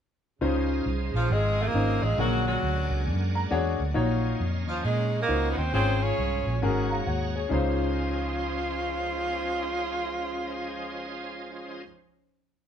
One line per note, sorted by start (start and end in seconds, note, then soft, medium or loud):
0.41 0.79 C#2 medium
0.41 1.10 C#3 medium
0.41 2.17 C#3 medium
0.41 2.17 F3 medium
0.41 0.88 C#4 medium
0.41 0.88 D#4 medium
0.41 2.17 D#4 medium
0.41 0.88 F4 medium
0.41 2.17 G#4 medium
0.41 0.88 C5 medium
0.41 2.17 C5 medium
0.41 2.17 D#5 soft
0.41 2.17 F5 soft
0.86 1.10 C2 medium
1.14 1.28 A#1 medium
1.14 1.34 F3 medium
1.14 1.30 F4 medium
1.30 1.68 G#1 medium
1.30 1.64 G#3 medium
1.30 2.15 C4 medium
1.30 1.66 F4 medium
1.30 1.67 G#4 medium
1.62 1.69 A3 medium
1.67 2.05 A#3 medium
1.67 2.15 D#4 medium
1.67 2.15 F4 medium
1.67 2.03 A#4 medium
1.74 1.98 G#1 medium
1.74 2.03 C#4 medium
1.74 2.03 D#4 medium
1.74 2.03 F4 medium
1.74 2.03 C5 medium
2.02 2.16 A1 medium
2.02 2.21 G#3 medium
2.02 2.19 G#4 medium
2.18 2.56 A#1 medium
2.18 2.87 A#2 medium
2.18 2.65 D3 medium
2.18 3.94 D3 medium
2.18 5.70 F#3 medium
2.18 2.46 F#3 medium
2.18 3.94 G#3 medium
2.18 3.94 A#3 medium
2.18 2.47 C#4 medium
2.18 2.47 D4 medium
2.18 2.65 F#4 medium
2.18 2.45 F#4 medium
2.18 2.65 G#4 medium
2.18 3.93 A#4 medium
2.18 2.65 A#4 medium
2.18 3.93 D5 medium
2.18 3.94 F#5 soft
2.18 3.93 G#5 medium
2.47 3.03 F#3 medium
2.47 3.32 C#4 medium
2.47 3.32 D4 medium
2.47 3.04 F#4 medium
2.63 2.86 D2 medium
2.90 3.08 C#2 medium
3.07 3.44 F#2 medium
3.35 3.50 A#5 medium
3.50 3.75 E2 medium
3.50 3.79 D4 medium
3.50 3.80 F#4 medium
3.50 3.80 G#4 medium
3.50 3.80 C#5 medium
3.50 3.92 F#5 medium
3.80 3.93 D2 medium
3.94 4.33 A#1 medium
3.94 4.63 A#2 medium
3.94 5.71 D#3 medium
3.94 6.60 C#4 medium
3.94 4.42 D#4 medium
3.94 5.72 D#4 medium
3.94 4.42 F4 medium
3.94 4.42 F#4 medium
3.94 5.71 C#5 medium
3.94 4.42 C#5 medium
3.94 5.71 D#5 medium
3.94 6.59 F5 medium
4.40 4.68 F2 medium
4.68 4.82 D#2 medium
4.68 4.84 F3 medium
4.68 4.83 F4 medium
4.84 5.22 A#2 medium
4.84 5.19 G#3 medium
4.84 5.20 C#4 medium
4.84 5.69 D#4 medium
4.84 5.21 G#4 medium
5.21 5.49 A#3 medium
5.21 5.70 C#4 medium
5.21 5.70 F#4 medium
5.21 5.57 A#4 medium
5.28 5.53 C#2 medium
5.28 5.57 D#4 medium
5.28 5.57 F4 medium
5.28 5.58 F#4 medium
5.28 5.58 C5 medium
5.51 5.59 B3 medium
5.57 5.71 D#2 medium
5.57 5.74 C4 medium
5.57 5.73 C5 medium
5.72 6.11 G#1 medium
5.72 6.42 G#2 medium
5.72 6.61 F3 medium
5.72 7.49 G#3 medium
5.72 6.04 C4 loud
5.72 6.20 C#4 medium
5.72 6.61 F4 medium
5.72 6.01 F4 medium
5.72 6.20 F4 medium
5.72 7.49 G#4 medium
5.72 6.01 G#4 medium
5.72 6.20 G#4 medium
5.72 6.00 C5 loud
5.72 7.49 C#5 medium
5.72 6.20 C#5 medium
6.02 6.63 C#4 medium
6.02 6.59 F4 medium
6.02 6.59 G#4 medium
6.02 6.63 C#5 medium
6.18 6.42 C2 medium
6.47 6.60 A#1 medium
6.62 7.00 G#1 medium
6.62 7.31 G#2 medium
6.62 7.50 A#3 medium
6.62 7.50 C#4 medium
6.62 7.00 C#4 medium
6.62 7.00 F#4 medium
6.62 7.50 F#4 medium
6.62 6.91 G#4 medium
6.62 6.91 A#4 medium
6.62 7.50 F#5 medium
6.62 7.50 A#5 medium
6.90 7.06 F5 soft
6.90 7.06 A#5 medium
7.07 7.45 D#2 medium
7.07 7.34 C#5 medium
7.07 7.33 F#5 medium
7.36 7.77 G#4 soft
7.36 7.77 C#5 medium
7.49 11.83 C#2 medium
7.49 11.82 F3 medium
7.49 11.81 C#4 medium
7.49 11.82 C#4 medium
7.49 11.82 D#4 medium
7.49 11.82 F4 medium
7.49 11.83 F4 medium
7.49 11.82 F4 soft
7.49 11.82 G#4 soft
7.49 11.82 C5 medium
7.49 11.82 C5 soft
7.49 11.85 C5 medium
7.49 11.82 D#5 medium